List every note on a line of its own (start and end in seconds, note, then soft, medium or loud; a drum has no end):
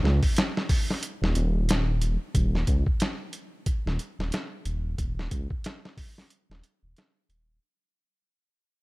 0.03 0.20 C#2 loud
0.03 snare medium
0.23 kick medium
0.23 open hi-hat medium
0.36 snare loud
0.36 closed hi-hat medium
0.57 snare medium
0.69 kick medium
0.69 open hi-hat medium
0.90 snare soft
1.03 closed hi-hat loud
1.22 1.34 D#1 medium
1.22 snare medium
1.35 2.17 D#1 medium
1.35 closed hi-hat medium
1.69 snare loud
1.69 closed hi-hat medium
2.02 closed hi-hat medium
2.35 2.64 D#1 loud
2.35 kick loud
2.35 closed hi-hat medium
2.55 snare soft
2.67 2.84 C#2 loud
2.67 kick medium
2.67 closed hi-hat medium
2.86 kick medium
3.00 snare loud
3.00 closed hi-hat medium
3.33 closed hi-hat medium
3.66 kick loud
3.66 closed hi-hat medium
3.86 3.98 D#1 medium
3.86 snare medium
3.99 closed hi-hat medium
4.19 4.31 D#1 medium
4.19 snare soft
4.32 snare loud
4.32 closed hi-hat medium
4.65 4.95 D#1 medium
4.65 closed hi-hat medium
4.98 5.28 D#1 medium
4.98 kick loud
4.98 closed hi-hat medium
5.19 snare soft
5.31 5.48 C#2 loud
5.31 kick medium
5.31 closed hi-hat medium
5.50 kick medium
5.64 snare loud
5.64 closed hi-hat medium
5.85 snare soft
5.97 kick medium
5.97 open hi-hat medium
6.18 snare soft
6.30 closed hi-hat medium
6.50 6.62 D#1 medium
6.50 snare medium
6.64 closed hi-hat medium
6.83 6.95 D#1 medium
6.97 snare loud
6.97 closed hi-hat medium
7.29 7.59 D#1 medium
7.29 closed hi-hat medium